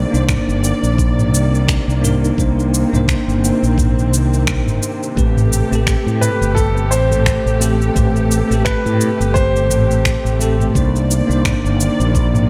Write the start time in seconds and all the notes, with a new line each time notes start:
Already playing: C3 D#3 A#3 D4 D#4 C5 D5
0.11 C2 A#3 D4, shaker
0.15 D#4 C5
0.29 finger snap, kick, mid tom, shaker
0.48 G1, shaker
0.64 shaker
0.83 A#1, shaker
0.98 kick, shaker
1.19 mid tom, shaker
1.33 C2, shaker
1.55 shaker
1.68 finger snap, kick, shaker
1.88 C2, shaker
2.01 A#3 D4 D#4 A#4, mid tom, shaker
2.25 shaker
2.36 C2 A#3 C4 D4 D#4 C5, kick, shaker
2.60 shaker
2.74 shaker
2.90 C2 A#3 D4 D#4, mid tom
2.94 C5, shaker
3.08 finger snap, kick, shaker
3.28 G1, shaker
3.44 shaker
3.63 A#1, shaker
3.78 kick, mid tom, shaker
3.99 shaker
4.12 C2, shaker
4.33 shaker
4.47 finger snap, kick, shaker
4.67 G1, mid tom, shaker
4.83 shaker
5.03 shaker
5.16 A1 A3 C4 G4 A4 B4, kick, shaker
5.37 mid tom, shaker
5.53 shaker
5.69 A1 A3 C4 G4, shaker
5.75 A4
5.87 finger snap, kick, shaker
6.06 A2, shaker
6.21 B4, mid tom, shaker
6.41 G1, shaker
6.55 A4, kick, shaker
6.77 shaker
6.91 A1 C5, shaker
7.11 mid tom, shaker
7.26 finger snap, kick, shaker
7.46 A1, shaker
7.59 A3 C4 G4 A4, shaker
7.81 shaker
7.94 A1 A3 C4 G4 B4, kick, mid tom, shaker
8.16 shaker
8.31 shaker
8.48 A1 A3 C4 G4, shaker
8.54 A4
8.65 B4, finger snap, kick, shaker
8.86 A2, mid tom, shaker
9.01 shaker
9.20 G1, shaker
9.34 C5, kick, shaker
9.56 shaker
9.70 A1, mid tom, shaker
9.91 shaker
10.05 finger snap, kick, shaker
10.25 A1, shaker
10.39 A3 C4 G4 A4, shaker
10.60 mid tom, shaker
10.74 C2 C3 D#3 A#3 D4 D#4 C5 D5, kick, shaker
10.96 shaker
11.11 shaker
11.27 C2 A#3 D4 D#4, shaker
11.33 C5
11.45 finger snap, kick, mid tom, shaker
11.64 G1, shaker
11.80 shaker
12.00 A#1, shaker
12.15 kick, shaker
12.35 mid tom, shaker